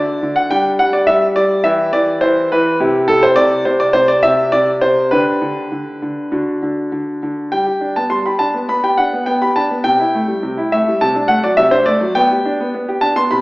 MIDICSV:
0, 0, Header, 1, 2, 480
1, 0, Start_track
1, 0, Key_signature, 1, "major"
1, 0, Tempo, 574713
1, 425, Time_signature, 4, 2, 24, 8
1, 3782, Tempo, 594648
1, 6662, Tempo, 580271
1, 11061, End_track
2, 0, Start_track
2, 0, Title_t, "Grand piano"
2, 0, Program_c, 0, 0
2, 0, Note_on_c, 0, 50, 46
2, 0, Note_on_c, 0, 62, 37
2, 0, Note_on_c, 0, 66, 34
2, 0, Note_on_c, 0, 74, 82
2, 177, Note_off_c, 0, 50, 0
2, 190, Note_on_c, 0, 50, 46
2, 298, Note_on_c, 0, 78, 77
2, 302, Note_off_c, 0, 74, 0
2, 390, Note_off_c, 0, 62, 0
2, 390, Note_off_c, 0, 66, 0
2, 421, Note_off_c, 0, 50, 0
2, 422, Note_off_c, 0, 78, 0
2, 422, Note_on_c, 0, 79, 86
2, 425, Note_on_c, 0, 55, 55
2, 425, Note_on_c, 0, 67, 38
2, 428, Note_on_c, 0, 62, 40
2, 567, Note_off_c, 0, 79, 0
2, 654, Note_off_c, 0, 55, 0
2, 661, Note_on_c, 0, 78, 84
2, 666, Note_on_c, 0, 55, 46
2, 777, Note_on_c, 0, 74, 76
2, 782, Note_off_c, 0, 78, 0
2, 884, Note_off_c, 0, 55, 0
2, 892, Note_on_c, 0, 76, 87
2, 897, Note_on_c, 0, 55, 45
2, 900, Note_off_c, 0, 74, 0
2, 1038, Note_off_c, 0, 76, 0
2, 1129, Note_off_c, 0, 55, 0
2, 1134, Note_on_c, 0, 74, 84
2, 1141, Note_on_c, 0, 55, 46
2, 1346, Note_off_c, 0, 67, 0
2, 1348, Note_off_c, 0, 62, 0
2, 1352, Note_off_c, 0, 74, 0
2, 1368, Note_on_c, 0, 76, 86
2, 1373, Note_off_c, 0, 55, 0
2, 1375, Note_on_c, 0, 64, 44
2, 1375, Note_on_c, 0, 67, 38
2, 1377, Note_on_c, 0, 52, 60
2, 1589, Note_off_c, 0, 76, 0
2, 1601, Note_off_c, 0, 52, 0
2, 1611, Note_on_c, 0, 74, 88
2, 1614, Note_on_c, 0, 52, 50
2, 1758, Note_off_c, 0, 74, 0
2, 1843, Note_off_c, 0, 52, 0
2, 1846, Note_on_c, 0, 72, 83
2, 1856, Note_on_c, 0, 52, 58
2, 2068, Note_off_c, 0, 72, 0
2, 2091, Note_off_c, 0, 52, 0
2, 2103, Note_on_c, 0, 71, 81
2, 2108, Note_on_c, 0, 52, 57
2, 2303, Note_off_c, 0, 64, 0
2, 2303, Note_off_c, 0, 67, 0
2, 2317, Note_off_c, 0, 71, 0
2, 2336, Note_off_c, 0, 52, 0
2, 2338, Note_on_c, 0, 64, 44
2, 2340, Note_on_c, 0, 48, 67
2, 2342, Note_on_c, 0, 67, 50
2, 2567, Note_off_c, 0, 48, 0
2, 2570, Note_on_c, 0, 69, 87
2, 2579, Note_on_c, 0, 48, 51
2, 2694, Note_off_c, 0, 69, 0
2, 2696, Note_on_c, 0, 72, 88
2, 2801, Note_off_c, 0, 48, 0
2, 2804, Note_on_c, 0, 74, 104
2, 2814, Note_on_c, 0, 48, 51
2, 2817, Note_off_c, 0, 72, 0
2, 3027, Note_off_c, 0, 74, 0
2, 3043, Note_off_c, 0, 48, 0
2, 3051, Note_on_c, 0, 72, 72
2, 3055, Note_on_c, 0, 48, 55
2, 3172, Note_on_c, 0, 74, 89
2, 3175, Note_off_c, 0, 72, 0
2, 3281, Note_off_c, 0, 48, 0
2, 3284, Note_on_c, 0, 72, 97
2, 3294, Note_on_c, 0, 48, 53
2, 3296, Note_off_c, 0, 74, 0
2, 3409, Note_on_c, 0, 74, 87
2, 3412, Note_off_c, 0, 72, 0
2, 3525, Note_off_c, 0, 48, 0
2, 3530, Note_on_c, 0, 76, 96
2, 3535, Note_off_c, 0, 74, 0
2, 3538, Note_on_c, 0, 48, 55
2, 3770, Note_off_c, 0, 48, 0
2, 3776, Note_on_c, 0, 74, 92
2, 3778, Note_off_c, 0, 76, 0
2, 3782, Note_on_c, 0, 48, 53
2, 3920, Note_off_c, 0, 74, 0
2, 4007, Note_off_c, 0, 48, 0
2, 4013, Note_on_c, 0, 72, 84
2, 4019, Note_on_c, 0, 48, 47
2, 4225, Note_off_c, 0, 64, 0
2, 4227, Note_off_c, 0, 67, 0
2, 4231, Note_off_c, 0, 72, 0
2, 4251, Note_off_c, 0, 48, 0
2, 4252, Note_on_c, 0, 71, 83
2, 4259, Note_on_c, 0, 50, 55
2, 4261, Note_on_c, 0, 62, 37
2, 4261, Note_on_c, 0, 67, 42
2, 4486, Note_off_c, 0, 50, 0
2, 4499, Note_on_c, 0, 50, 47
2, 4731, Note_off_c, 0, 50, 0
2, 4743, Note_on_c, 0, 50, 43
2, 4976, Note_off_c, 0, 50, 0
2, 4988, Note_on_c, 0, 50, 41
2, 5192, Note_off_c, 0, 62, 0
2, 5192, Note_off_c, 0, 67, 0
2, 5214, Note_off_c, 0, 50, 0
2, 5225, Note_on_c, 0, 62, 32
2, 5226, Note_on_c, 0, 50, 47
2, 5229, Note_on_c, 0, 66, 33
2, 5269, Note_off_c, 0, 71, 0
2, 5460, Note_off_c, 0, 50, 0
2, 5475, Note_on_c, 0, 50, 43
2, 5701, Note_off_c, 0, 50, 0
2, 5713, Note_on_c, 0, 50, 44
2, 5945, Note_off_c, 0, 50, 0
2, 5962, Note_on_c, 0, 50, 42
2, 6159, Note_off_c, 0, 62, 0
2, 6160, Note_off_c, 0, 66, 0
2, 6189, Note_off_c, 0, 50, 0
2, 6195, Note_on_c, 0, 79, 72
2, 6201, Note_on_c, 0, 55, 47
2, 6311, Note_off_c, 0, 55, 0
2, 6314, Note_on_c, 0, 67, 36
2, 6431, Note_on_c, 0, 62, 39
2, 6435, Note_off_c, 0, 67, 0
2, 6548, Note_off_c, 0, 79, 0
2, 6553, Note_off_c, 0, 62, 0
2, 6554, Note_on_c, 0, 81, 67
2, 6557, Note_on_c, 0, 59, 34
2, 6664, Note_on_c, 0, 84, 74
2, 6668, Note_off_c, 0, 81, 0
2, 6669, Note_on_c, 0, 55, 39
2, 6675, Note_off_c, 0, 59, 0
2, 6783, Note_off_c, 0, 55, 0
2, 6784, Note_off_c, 0, 84, 0
2, 6795, Note_on_c, 0, 83, 68
2, 6800, Note_on_c, 0, 67, 36
2, 6904, Note_on_c, 0, 81, 72
2, 6910, Note_off_c, 0, 83, 0
2, 6911, Note_on_c, 0, 62, 38
2, 6919, Note_off_c, 0, 67, 0
2, 7032, Note_on_c, 0, 59, 38
2, 7035, Note_off_c, 0, 62, 0
2, 7050, Note_off_c, 0, 81, 0
2, 7142, Note_off_c, 0, 59, 0
2, 7152, Note_on_c, 0, 83, 77
2, 7155, Note_on_c, 0, 59, 46
2, 7268, Note_off_c, 0, 59, 0
2, 7270, Note_off_c, 0, 83, 0
2, 7274, Note_on_c, 0, 67, 40
2, 7275, Note_on_c, 0, 79, 65
2, 7389, Note_on_c, 0, 78, 72
2, 7392, Note_off_c, 0, 79, 0
2, 7397, Note_on_c, 0, 62, 36
2, 7398, Note_off_c, 0, 67, 0
2, 7519, Note_off_c, 0, 62, 0
2, 7519, Note_on_c, 0, 59, 35
2, 7606, Note_off_c, 0, 78, 0
2, 7621, Note_off_c, 0, 59, 0
2, 7626, Note_on_c, 0, 79, 69
2, 7633, Note_on_c, 0, 59, 46
2, 7748, Note_off_c, 0, 59, 0
2, 7748, Note_off_c, 0, 79, 0
2, 7755, Note_on_c, 0, 83, 75
2, 7758, Note_on_c, 0, 67, 45
2, 7871, Note_on_c, 0, 81, 76
2, 7872, Note_off_c, 0, 83, 0
2, 7879, Note_on_c, 0, 62, 41
2, 7880, Note_off_c, 0, 67, 0
2, 7995, Note_on_c, 0, 59, 39
2, 8001, Note_off_c, 0, 62, 0
2, 8015, Note_off_c, 0, 81, 0
2, 8104, Note_on_c, 0, 79, 89
2, 8108, Note_on_c, 0, 48, 55
2, 8113, Note_off_c, 0, 59, 0
2, 8226, Note_off_c, 0, 48, 0
2, 8233, Note_on_c, 0, 64, 42
2, 8357, Note_on_c, 0, 57, 44
2, 8359, Note_off_c, 0, 64, 0
2, 8467, Note_on_c, 0, 55, 41
2, 8482, Note_off_c, 0, 57, 0
2, 8592, Note_on_c, 0, 48, 48
2, 8598, Note_off_c, 0, 55, 0
2, 8711, Note_off_c, 0, 48, 0
2, 8713, Note_on_c, 0, 64, 44
2, 8801, Note_off_c, 0, 79, 0
2, 8834, Note_on_c, 0, 76, 82
2, 8837, Note_on_c, 0, 57, 46
2, 8841, Note_off_c, 0, 64, 0
2, 8962, Note_off_c, 0, 57, 0
2, 8965, Note_on_c, 0, 55, 44
2, 9049, Note_off_c, 0, 76, 0
2, 9074, Note_on_c, 0, 81, 82
2, 9078, Note_on_c, 0, 48, 62
2, 9079, Note_off_c, 0, 55, 0
2, 9190, Note_off_c, 0, 48, 0
2, 9194, Note_on_c, 0, 62, 47
2, 9286, Note_off_c, 0, 81, 0
2, 9296, Note_on_c, 0, 78, 86
2, 9301, Note_on_c, 0, 57, 47
2, 9317, Note_off_c, 0, 62, 0
2, 9421, Note_off_c, 0, 78, 0
2, 9425, Note_on_c, 0, 74, 76
2, 9426, Note_on_c, 0, 54, 44
2, 9430, Note_off_c, 0, 57, 0
2, 9535, Note_on_c, 0, 76, 96
2, 9543, Note_on_c, 0, 48, 55
2, 9546, Note_off_c, 0, 74, 0
2, 9552, Note_off_c, 0, 54, 0
2, 9653, Note_on_c, 0, 62, 48
2, 9653, Note_on_c, 0, 72, 83
2, 9662, Note_off_c, 0, 48, 0
2, 9662, Note_off_c, 0, 76, 0
2, 9773, Note_on_c, 0, 74, 83
2, 9782, Note_on_c, 0, 57, 47
2, 9783, Note_off_c, 0, 72, 0
2, 9789, Note_off_c, 0, 62, 0
2, 9898, Note_on_c, 0, 54, 49
2, 9915, Note_off_c, 0, 57, 0
2, 10000, Note_off_c, 0, 74, 0
2, 10016, Note_on_c, 0, 79, 96
2, 10022, Note_on_c, 0, 59, 60
2, 10027, Note_off_c, 0, 54, 0
2, 10144, Note_off_c, 0, 59, 0
2, 10150, Note_on_c, 0, 67, 43
2, 10267, Note_on_c, 0, 62, 53
2, 10277, Note_off_c, 0, 67, 0
2, 10391, Note_on_c, 0, 59, 47
2, 10395, Note_off_c, 0, 62, 0
2, 10450, Note_off_c, 0, 79, 0
2, 10494, Note_off_c, 0, 59, 0
2, 10507, Note_on_c, 0, 59, 46
2, 10623, Note_on_c, 0, 67, 45
2, 10624, Note_off_c, 0, 59, 0
2, 10728, Note_on_c, 0, 81, 88
2, 10735, Note_on_c, 0, 62, 43
2, 10751, Note_off_c, 0, 67, 0
2, 10852, Note_on_c, 0, 59, 44
2, 10852, Note_on_c, 0, 84, 95
2, 10856, Note_off_c, 0, 81, 0
2, 10866, Note_off_c, 0, 62, 0
2, 10972, Note_on_c, 0, 83, 82
2, 10977, Note_off_c, 0, 59, 0
2, 10977, Note_off_c, 0, 84, 0
2, 10977, Note_on_c, 0, 48, 56
2, 11061, Note_off_c, 0, 48, 0
2, 11061, Note_off_c, 0, 83, 0
2, 11061, End_track
0, 0, End_of_file